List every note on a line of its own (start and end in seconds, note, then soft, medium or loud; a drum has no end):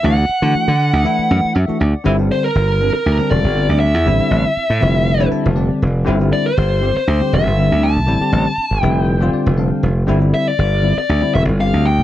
0.03 0.28 D2 medium
0.03 0.14 E3 loud
0.03 0.14 A3 medium
0.03 0.15 D4 medium
0.03 0.15 F#4 loud
0.03 1.52 F#5 medium
0.16 0.23 D4 soft
0.16 0.24 F#4 soft
0.42 0.53 D3 loud
0.42 0.71 E3 medium
0.42 0.71 A3 medium
0.42 0.71 D4 medium
0.42 0.72 F#4 medium
0.55 muted slap bass stroke soft
0.68 0.91 D3 medium
0.79 0.86 D4 soft
0.79 0.87 F#4 soft
0.79 1.03 F#5 medium
0.93 1.04 D2 medium
1.04 1.52 E3 medium
1.04 1.52 A3 medium
1.04 1.52 D4 medium
1.04 1.53 E4 loud
1.04 1.52 E5 medium
1.19 muted slap bass stroke soft
1.31 1.43 F#2 medium
1.45 muted slap bass stroke soft
1.55 1.68 F#2 medium
1.55 1.79 E5 medium
1.68 1.77 E3 medium
1.68 1.77 A3 medium
1.68 1.78 D4 medium
1.68 1.78 F#4 medium
1.68 muted slap bass stroke soft
1.79 1.93 D2 medium
1.79 1.86 D4 soft
1.79 1.87 A4 soft
1.79 2.04 D5 medium
2.04 2.29 G1 medium
2.04 2.15 D3 loud
2.04 2.15 G3 medium
2.04 2.15 C4 medium
2.04 2.16 E4 loud
2.17 2.46 D3 medium
2.17 2.46 G3 medium
2.17 2.47 C4 medium
2.17 2.47 D4 medium
2.32 2.44 C5 medium
2.44 2.92 A#4 medium
2.55 2.91 G1 medium
2.55 2.62 E4 soft
2.80 2.91 D3 medium
2.80 2.91 G3 medium
2.80 2.91 C4 medium
2.80 2.91 D4 medium
2.93 2.99 C4 soft
2.93 3.28 A#4 medium
3.06 3.18 D2 medium
3.18 3.47 D3 medium
3.18 3.47 G3 medium
3.18 3.48 C4 medium
3.18 3.48 D4 medium
3.30 3.43 E1 medium
3.30 3.78 D5 medium
3.44 3.67 G1 medium
3.55 3.84 D3 medium
3.55 3.84 G3 medium
3.55 3.85 C4 medium
3.55 3.85 D4 medium
3.69 3.94 D2 medium
3.80 5.27 E5 medium
3.94 4.08 E2 medium
4.05 4.19 A1 medium
4.05 4.16 D3 medium
4.05 4.16 G3 medium
4.05 4.16 C4 medium
4.05 4.17 E4 loud
4.18 4.47 D3 medium
4.18 4.47 G3 medium
4.18 4.48 C4 medium
4.18 4.48 E4 medium
4.18 muted slap bass stroke soft
4.31 4.44 A1 medium
4.56 4.63 C4 soft
4.56 4.64 E4 soft
4.56 muted slap bass stroke soft
4.70 4.81 A2 medium
4.80 5.28 F1 medium
4.80 5.11 D3 medium
4.80 5.12 G3 medium
4.80 5.12 C4 medium
4.80 5.12 E4 medium
5.19 5.47 D3 loud
5.19 5.48 G3 medium
5.19 5.48 C4 medium
5.19 5.48 E4 loud
5.32 5.55 A5 medium
5.32 muted slap bass stroke soft
5.46 5.69 F1 medium
5.55 5.84 D3 medium
5.55 5.85 G3 medium
5.55 5.85 C4 medium
5.55 5.85 D4 medium
5.55 6.03 D5 medium
5.82 6.05 F1 medium
5.94 6.00 C4 soft
5.94 6.01 E4 soft
6.05 6.31 G1 medium
6.05 6.16 D3 loud
6.05 6.16 G3 loud
6.05 6.17 C4 loud
6.05 6.17 E4 loud
6.19 6.48 D3 medium
6.19 6.48 G3 medium
6.19 6.49 C4 medium
6.19 6.49 E4 medium
6.33 6.45 D5 medium
6.46 6.96 C5 medium
6.57 6.93 G1 medium
6.81 6.92 D3 medium
6.81 6.92 G3 medium
6.81 6.92 C4 medium
6.81 6.93 G4 medium
6.94 7.01 C4 soft
6.94 7.02 D4 soft
6.94 7.34 C5 medium
7.07 7.20 D2 medium
7.19 7.48 D3 medium
7.19 7.49 G3 medium
7.19 7.49 C4 medium
7.19 7.49 G4 medium
7.33 7.45 E1 medium
7.33 7.85 E5 medium
7.47 7.69 G1 medium
7.57 7.86 D3 medium
7.57 7.86 G3 medium
7.57 7.86 C4 medium
7.57 7.87 E4 medium
7.72 7.98 D2 medium
7.83 8.81 A5 medium
7.96 8.07 C2 medium
8.06 8.20 A1 loud
8.06 8.17 D3 medium
8.06 8.18 G3 medium
8.06 8.18 C4 medium
8.06 8.18 E4 loud
8.20 8.49 D3 medium
8.20 8.49 G3 medium
8.20 8.49 C4 medium
8.20 8.49 G4 medium
8.20 muted slap bass stroke soft
8.32 8.45 A1 medium
8.58 8.65 D4 soft
8.58 muted slap bass stroke soft
8.71 8.82 G1 medium
8.81 9.29 F1 medium
8.81 9.13 D3 medium
8.81 9.13 G3 medium
8.81 9.14 C4 medium
8.81 9.14 E4 loud
8.81 9.30 G5 medium
9.20 9.49 D3 loud
9.20 9.49 G3 medium
9.20 9.50 C4 medium
9.20 9.50 F4 loud
9.33 9.57 D5 medium
9.46 9.70 F1 medium
9.57 9.86 D3 medium
9.57 9.86 G3 medium
9.57 9.87 C4 medium
9.57 9.87 D4 medium
9.57 10.05 F5 medium
9.83 10.06 F1 medium
9.96 10.02 C4 soft
9.96 10.03 F4 soft
10.07 10.31 G1 medium
10.07 10.18 D3 loud
10.07 10.18 G3 medium
10.07 10.18 C4 loud
10.07 10.19 E4 loud
10.20 10.49 D3 medium
10.20 10.49 G3 medium
10.20 10.50 C4 medium
10.20 10.50 E4 medium
10.34 10.48 E5 medium
10.48 10.97 D5 medium
10.59 10.94 G1 medium
10.82 10.93 D3 medium
10.82 10.93 G3 medium
10.82 10.94 C4 medium
10.82 10.94 E4 medium
10.95 11.02 C4 soft
10.95 11.32 D5 medium
11.09 11.22 D2 medium
11.20 11.50 D3 medium
11.20 11.50 G3 medium
11.20 11.50 C4 medium
11.20 11.51 E4 medium
11.35 11.47 E1 medium
11.35 11.41 E5 medium
11.48 11.71 G1 medium
11.58 11.87 D3 medium
11.58 11.88 G3 medium
11.58 11.88 C4 medium
11.58 11.88 G4 medium
11.58 11.86 F5 medium
11.73 12.00 D2 medium
11.86 12.03 G5 medium
11.97 12.03 C2 medium
11.97 12.03 C4 soft
11.97 12.03 E4 soft